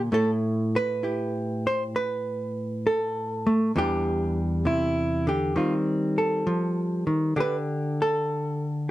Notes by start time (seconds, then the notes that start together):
Already playing: A#2 D3
0.12 A2 A3 E4 A4
0.76 B4
1.03 E4 G4
1.67 C5
1.96 B4
2.87 A4
3.47 A3
3.76 E2 E3 G3 D4 G4
4.65 C3 E4
5.27 D3 G4
5.56 D#3 G3 C4 F4
6.18 A4
6.47 F3
7.07 D#3
7.36 D3 D4 G4
7.40 B4
8.02 A4